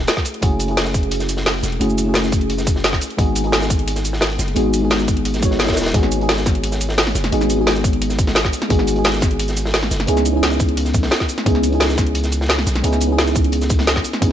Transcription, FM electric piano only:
Already playing: A3 C#4 E4 F#4 G#4
0.41 A3 C#4 E4 F#4 G#4
0.66 A3 C#4 E4 F#4
0.71 G#4
1.79 A3 C#4 E4 F#4 G#4
2.04 A3 C#4 E4 F#4
2.09 G#4
3.17 G#3 B3 D#4 F#4 G#4
3.42 G#3 B3 D#4 F#4
3.47 G#4
4.55 G#3 B3 D#4 F#4 G#4
4.79 G#3 B3 D#4
4.83 F#4 G#4
5.40 G#3 B3 D#4
5.44 F#4 C#5
5.93 G#3 B3 D#4 F#4 G#4
6.17 G#3 B3 D#4
6.21 F#4 G#4
7.31 G#3 B3 D#4 F#4 G#4
7.56 G#3 B3 D#4 F#4
7.61 G#4
8.69 G#3 B3 D#4 F#4 G#4
8.94 G#3 B3 D#4 F#4
8.99 G#4
10.07 B3 C#4 D#4 E4 G#4
10.32 B3 C#4 D#4 E4
10.37 G#4
11.45 B3 C#4 D#4 E4 G#4
11.70 B3 C#4 D#4 E4
11.75 G#4
12.82 B3 C#4 D#4 E4 G#4
13.07 B3 C#4 D#4 E4
13.12 G#4
14.21 B3 C#4 D#4 E4 G#4

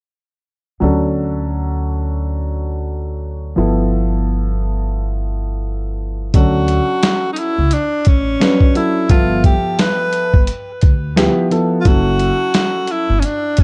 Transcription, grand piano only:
0.80 F#3 C#4 D4 A4
3.56 F3 B3 E4 A4
6.34 F#3 C#4 D4 A4
8.40 F#3 C#4 D4 B4
8.74 F#3 C#4 D4 A4
9.09 F3 B3 A4 E5
11.16 F3 B3 E4 G4
11.50 F3 B3 E4 A4
11.85 F#3 C#4 E4 A4

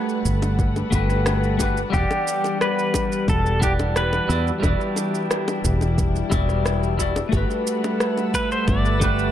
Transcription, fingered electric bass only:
0.25 G1
0.92 G1
1.93 E1
3.28 E1
4.29 E2
4.63 E1
5.64 E1
6.32 E1
7.33 G1
8.68 G1

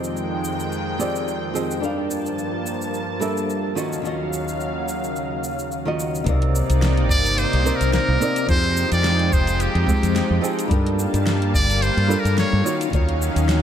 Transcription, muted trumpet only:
7.10 D5
7.38 C5
7.76 A#4
7.94 A#4
8.49 C5
8.93 D5
9.33 C5
9.61 G4
11.55 D5
11.82 C5
12.20 A#4
12.39 C#5

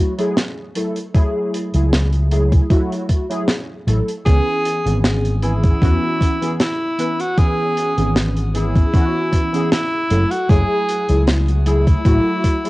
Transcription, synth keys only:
Already playing: F#3 A3 E4 F#4
0.18 F#3 A3 E4 G#4
0.75 F#3 A3 E4 A4
1.14 F#3 A3 E4 G#4
1.74 F#3 A3 E4 G#4
2.31 F#3 A3 E4 G#4
2.70 F#3 A3 E4 F#4
3.29 F#3 A3 E4 G#4
3.87 F#3 A3 E4 A4
4.26 E3 B3 C#4 G#4
4.85 E3 B3 C#4 G#4
5.42 E3 B3 C#4 G#4
5.81 E3 B3 C#4 F#4
6.41 E3 B3 C#4 G#4
6.98 E3 B3 C#4 B4
7.37 E3 B3 C#4 G#4
7.97 E3 B3 C#4 G#4
8.54 E3 B3 C#4 G#4
8.93 E3 B3 C#4 F#4
9.53 E3 B3 C#4 G#4
10.10 F#3 A3 E4 A4
10.49 F#3 A3 E4 G#4
11.08 F#3 A3 E4 G#4
11.65 F#3 A3 E4 G#4
12.04 F#3 A3 E4 F#4
12.64 F#3 A3 E4 G#4

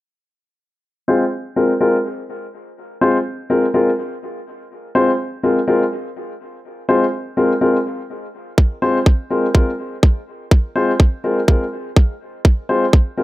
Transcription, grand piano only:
1.08 G#3 C4 F4 C5
1.56 G#3 C4 F4 A#4
1.81 G#3 C4 F4 A#4
3.01 G#3 C4 F4 C5
3.50 G#3 C4 F4 A#4
3.74 G#3 C4 F4 A#4
4.95 G#3 C4 F4 C5
5.43 G#3 C4 F4 A#4
5.68 G#3 C4 F4 A#4
6.89 G#3 C4 F4 C5
7.37 G#3 C4 F4 A#4
7.61 G#3 C4 F4 A#4
8.82 G#3 C4 F4 C5
9.30 G#3 C4 F4 A#4
9.55 G#3 C4 F4 A#4
10.76 G#3 C4 F4 C5
11.24 G#3 C4 F4 A#4
11.48 G#3 C4 F4 A#4
12.69 G#3 C4 F4 C5
13.17 G#3 C4 F4 A#4

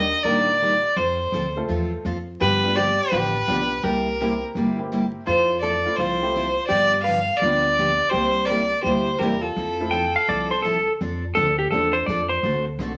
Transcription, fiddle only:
Already playing: D#5
0.23 D5
0.96 C5
2.41 B4
2.76 D5
3.11 B4
3.83 A#4
5.26 C5
5.61 D5
5.97 C5
6.67 D5
7.03 F5
7.37 D5
8.10 C5
8.45 D5
8.83 C5
9.19 A#4
9.42 A4

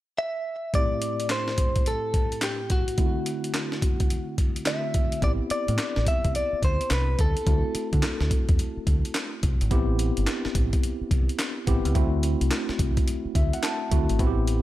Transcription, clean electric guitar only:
0.18 E5
0.75 D5
1.31 C5
1.88 A4
2.43 G4
2.72 F#4
4.67 E5
5.24 D5
5.51 D5
6.08 E5
6.36 D5
6.65 C5
6.92 B4
7.21 A4

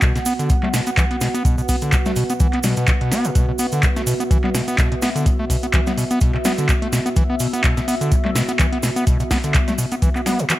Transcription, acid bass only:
0.02 B2
0.16 B2
0.26 B3
0.39 D3
0.50 A2
0.63 A3
0.74 B2
0.87 B3
0.98 E3
1.11 B3
1.21 B2
1.34 B3
1.45 B2
1.58 B2
1.69 B3
1.82 D3
1.93 A2
2.06 A3
2.17 B2
2.30 B3
2.40 E3
2.54 B3
2.64 B2
2.77 B2
2.88 B2
3.01 B2
3.11 B3
3.25 B2
3.35 B2
3.49 B2
3.59 B3
3.73 D3
3.83 A2
3.96 A3
4.07 B2
4.20 B3
4.31 E3
4.44 B3
4.54 B2
4.68 B3
4.78 B2
4.92 B2
5.02 B3
5.16 D3
5.26 A2
5.39 A3
5.50 B2
5.63 B3
5.74 E3
5.87 B3
5.97 B2
6.11 B3
6.21 B2
6.34 B2
6.45 B3
6.58 D3
6.69 A2
6.82 A3
6.93 B2
7.06 B3
7.16 E3
7.30 B3
7.40 B2
7.53 B3
7.64 B2
7.77 B2
7.88 B3
8.01 D3
8.11 A2
8.25 A3
8.35 B2
8.49 B3
8.59 E3
8.72 B3
8.83 B2
8.96 B3
9.07 B2
9.20 B2
9.31 B3
9.44 D3
9.55 A2
9.68 A3
9.79 B2
9.92 B3
10.02 E3
10.16 B3
10.26 B3
10.39 B2
10.50 E3

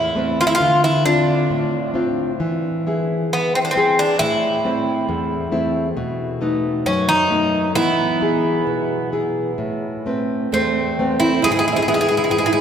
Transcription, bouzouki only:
Already playing: E4
0.41 F4
0.47 E4
0.55 F4
0.84 E4
1.06 D4
3.33 B3
3.55 C4
3.65 D4
3.71 C4
3.99 D4
4.19 E4
6.86 C#4
7.09 D#4
7.75 E4
10.54 C4
11.20 E4
11.44 G#4
11.52 G#4
11.59 G#4
11.68 G#4
11.76 G#4
11.82 G#4
11.88 G#4
11.94 G#4
12.01 G#4
12.09 G#4
12.17 G#4
12.24 G#4
12.31 G#4
12.38 G#4
12.46 G#4
12.53 G#4

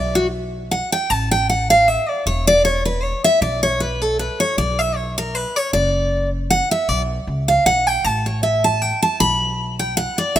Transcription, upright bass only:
Already playing: B1
1.10 A1
2.26 E1
3.41 B1
4.58 B1
5.73 F#1
6.89 B1
7.27 C#2
7.66 B1
8.04 A1
9.20 B1
10.36 A1

